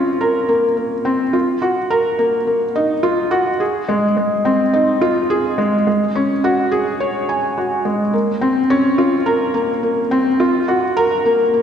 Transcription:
0.00 1.05 C4 medium
0.00 1.36 C#4 medium
0.00 1.33 F4 medium
0.21 0.48 A#4 medium
0.49 0.65 A#3 medium
0.77 0.93 A#3 medium
1.05 1.21 C4 medium
1.33 1.60 F4 medium
1.62 1.78 F#4 medium
1.90 2.17 A#4 medium
2.19 2.35 A#3 medium
2.47 2.63 A#3 medium
2.76 2.92 D#4 medium
3.03 3.30 F4 medium
3.31 3.48 F#4 loud
3.60 3.87 G#4 medium
3.89 4.05 G#3 medium
4.17 4.33 G#3 medium
4.45 4.61 C4 medium
4.74 5.00 D#4 medium
5.01 5.18 F4 medium
5.30 5.57 G#4 medium
5.58 5.74 G#3 medium
5.87 6.03 G#3 medium
6.15 6.31 C#4 medium
6.44 6.71 F#4 loud
6.72 6.88 G#4 medium
7.00 7.27 C#5 medium
7.29 7.56 G#5 medium
7.58 7.84 F#4 medium
7.85 8.01 G#3 medium
8.13 8.29 A#3 medium
8.41 8.58 C4 medium
8.70 8.97 C#4 loud
8.98 9.14 F4 medium
9.26 9.53 A#4 medium
9.54 9.71 A#3 medium
9.83 9.99 A#3 medium
10.11 10.27 C4 loud
10.40 10.67 F4 medium
10.68 10.84 F#4 medium
10.97 11.23 A#4 loud
11.26 11.41 A#3 medium
11.54 11.62 A#3 medium

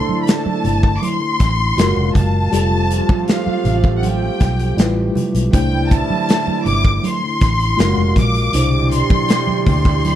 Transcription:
0.00 1.75 D3 medium
0.00 1.36 E3 medium
0.00 0.72 A3 medium
0.00 1.36 A3 medium
0.00 1.75 A3 medium
0.00 0.72 D4 medium
0.00 1.36 D4 medium
0.00 0.73 E4 medium
0.00 1.75 E4 medium
0.00 1.36 A4 medium
0.00 0.73 C5 medium
0.00 0.21 C6 loud
0.09 muted fingered electric bass stroke soft
0.09 high conga medium
0.23 0.28 B5 medium
0.27 0.96 A5 medium
0.27 snare loud
0.27 closed hi-hat medium
0.27 muted conga soft
0.46 muted fingered electric bass stroke soft
0.46 high conga medium
0.64 0.97 G1 medium
0.64 closed hi-hat medium
0.64 low conga medium
0.83 kick medium
0.97 1.03 D6 medium
1.02 2.16 C6 loud
1.02 closed hi-hat medium
1.02 high conga medium
1.21 muted conga soft
1.40 1.72 A1 medium
1.40 kick medium
1.40 snare soft
1.40 closed hi-hat medium
1.77 1.94 F#1 medium
1.77 2.52 A#2 medium
1.77 2.15 C#3 medium
1.77 2.14 F#3 medium
1.77 2.37 G#3 medium
1.77 2.52 G#3 medium
1.77 2.14 A#3 medium
1.77 2.38 F4 medium
1.77 2.14 F#4 medium
1.77 2.38 F#4 medium
1.77 2.38 A#4 medium
1.77 2.52 F5 medium
1.77 snare loud
1.77 closed hi-hat medium
1.97 2.12 F1 medium
1.97 muted conga soft
2.15 2.47 F#1 medium
2.15 3.24 A5 loud
2.15 kick medium
2.15 closed hi-hat medium
2.15 high conga medium
2.15 low conga medium
2.52 3.00 F1 loud
2.52 5.12 F3 medium
2.52 5.51 F3 medium
2.52 3.73 G3 medium
2.52 5.12 A3 medium
2.52 7.75 A3 medium
2.52 5.12 C4 medium
2.52 5.12 F4 medium
2.52 3.73 F4 medium
2.52 3.73 G4 medium
2.52 5.51 G4 medium
2.52 3.74 A4 medium
2.52 closed hi-hat loud
2.71 muted conga soft
2.91 closed hi-hat medium
3.09 muted fingered electric bass stroke soft
3.09 kick loud
3.09 high conga medium
3.28 3.92 F5 medium
3.28 snare loud
3.28 closed hi-hat medium
3.46 muted fingered electric bass stroke soft
3.46 high conga medium
3.64 4.28 A1 loud
3.64 closed hi-hat medium
3.64 low conga medium
3.84 kick medium
3.98 4.04 F#5 medium
4.03 5.16 G5 medium
4.03 closed hi-hat medium
4.03 muted conga soft
4.03 high conga medium
4.40 4.72 B1 loud
4.40 kick medium
4.40 snare soft
4.40 closed hi-hat medium
4.59 closed hi-hat medium
4.77 5.09 A1 medium
4.77 5.38 G3 medium
4.77 5.38 E4 medium
4.77 5.39 F4 medium
4.77 5.39 B4 medium
4.77 snare loud
4.77 closed hi-hat medium
5.15 closed hi-hat medium
5.15 high conga medium
5.15 low conga medium
5.35 5.51 B1 medium
5.35 closed hi-hat medium
5.52 6.01 C2 loud
5.52 7.38 A2 medium
5.52 7.77 D3 medium
5.52 7.38 E3 medium
5.52 7.38 G3 medium
5.52 6.73 A3 medium
5.52 6.74 D4 medium
5.52 7.77 E4 medium
5.52 7.38 E4 loud
5.52 6.74 E4 medium
5.52 6.74 C5 medium
5.52 5.89 G5 loud
5.52 kick loud
5.52 closed hi-hat loud
5.52 muted conga soft
5.72 muted conga soft
5.91 6.66 A5 loud
5.91 kick loud
5.91 closed hi-hat medium
6.10 muted fingered electric bass stroke soft
6.10 high conga medium
6.29 snare loud
6.29 closed hi-hat loud
6.47 muted fingered electric bass stroke medium
6.47 high conga medium
6.65 6.98 G1 medium
6.65 6.95 D6 loud
6.65 closed hi-hat medium
6.65 low conga medium
6.85 kick medium
6.97 7.04 D6 medium
7.03 8.18 C6 loud
7.03 closed hi-hat medium
7.03 muted conga soft
7.03 high conga medium
7.23 muted conga soft
7.41 7.73 A1 loud
7.41 kick medium
7.41 snare soft
7.41 closed hi-hat medium
7.59 closed hi-hat medium
7.77 7.95 F#1 loud
7.77 8.53 A#2 medium
7.77 8.16 C#3 medium
7.77 8.16 F#3 medium
7.77 8.38 G#3 medium
7.77 8.53 G#3 medium
7.77 8.16 A#3 medium
7.77 8.39 F4 medium
7.77 8.39 F#4 medium
7.77 8.16 F#4 medium
7.77 8.40 A#4 medium
7.77 8.53 F5 medium
7.77 snare loud
7.77 closed hi-hat medium
7.98 8.14 F1 medium
7.98 muted conga soft
8.16 8.48 A#1 medium
8.16 8.89 D6 loud
8.16 kick medium
8.16 closed hi-hat medium
8.16 high conga medium
8.16 low conga medium
8.34 closed hi-hat medium
8.53 9.02 C2 loud
8.53 9.74 B2 medium
8.53 10.15 B2 medium
8.53 10.15 D3 medium
8.53 10.15 E3 medium
8.53 10.15 G3 medium
8.53 9.75 D4 medium
8.53 10.15 D4 medium
8.53 10.15 E4 medium
8.53 9.75 E4 medium
8.53 10.15 G4 medium
8.53 9.75 C5 medium
8.53 closed hi-hat loud
8.91 9.69 C6 loud
8.91 closed hi-hat medium
9.10 muted fingered electric bass stroke soft
9.10 kick loud
9.10 high conga medium
9.29 snare loud
9.29 closed hi-hat loud
9.29 muted conga soft
9.47 muted fingered electric bass stroke soft
9.47 muted conga soft
9.47 high conga medium
9.66 10.15 D2 medium
9.66 10.15 C6 loud
9.66 kick medium
9.66 open hi-hat medium
9.66 low conga medium
9.85 kick medium
10.04 closed hi-hat medium
10.04 high conga medium

